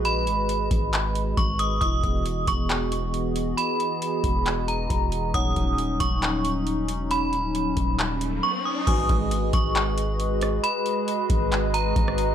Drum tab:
CC |----------------|----------------|----------------|----------------|
HH |x-x-x-x-x-x-x-x-|x-x-x-x-x-x-x-x-|x-x-x-x-x-x-x-x-|x-x-x-x-x-x-x-x-|
CP |--------x-------|--------x-------|--------x-------|--------x-------|
SD |----------------|----------------|----------------|----------------|
BD |------o-----o---|o-o---o---------|------o-----o---|o-o---o---------|

CC |----------------|x---------------|----------------|
HH |x-x-x-x-x-x-----|x-x-x-x-x-x-x-x-|x-x-x-x-x-x-x-x-|
CP |--------x-------|--------x-------|--------x-------|
SD |----------------|--------------r-|-------------r--|
BD |------o---------|o-o---o---------|------o-----o---|